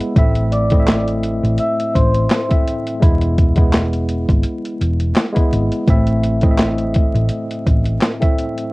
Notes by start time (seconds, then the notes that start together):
Already playing: G#3 B3 E4
0.01 closed hi-hat
0.16 A1 A2 A3 C4 E4 E5, kick, closed hi-hat
0.35 closed hi-hat
0.52 D5 D6, closed hi-hat
0.70 A2 A3 C4 E4 D#5, kick, closed hi-hat
0.79 E5
0.88 snare, clap, closed hi-hat
1.08 closed hi-hat
1.23 closed hi-hat
1.43 A1, closed hi-hat
1.58 E5 E6, closed hi-hat
1.80 closed hi-hat
1.94 A1 C5 C6, kick, closed hi-hat
2.14 closed hi-hat
2.30 snare, clap, closed hi-hat
2.48 A2 A3 C4 E4 E5, kick, closed hi-hat
2.67 closed hi-hat
2.87 closed hi-hat
3.00 E1 G#3 B3 E4, kick, closed hi-hat
3.21 closed hi-hat
3.38 kick, closed hi-hat
3.56 G#3 B3 E4, kick, closed hi-hat
3.73 snare, clap, closed hi-hat
3.93 closed hi-hat
4.09 closed hi-hat
4.29 G#1, kick, closed hi-hat
4.43 closed hi-hat
4.65 closed hi-hat
4.81 E1, closed hi-hat
5.00 closed hi-hat
5.16 snare, clap, closed hi-hat
5.32 G#3 B3 E4, closed hi-hat
5.37 kick
5.52 G#1, closed hi-hat
5.72 closed hi-hat
5.88 A1 A2 A3 C4 E4 E5, kick, closed hi-hat
6.07 closed hi-hat
6.24 closed hi-hat
6.41 A2 A3 C4 E4 D#5, kick, closed hi-hat
6.51 E5
6.58 snare, clap, closed hi-hat
6.78 closed hi-hat
6.94 kick, closed hi-hat
7.14 A1, closed hi-hat
7.29 closed hi-hat
7.51 closed hi-hat
7.67 A1, kick, closed hi-hat
7.85 closed hi-hat
8.01 snare, clap, closed hi-hat
8.19 A2 A3 C4 E4 E5, kick, closed hi-hat
8.38 closed hi-hat
8.58 closed hi-hat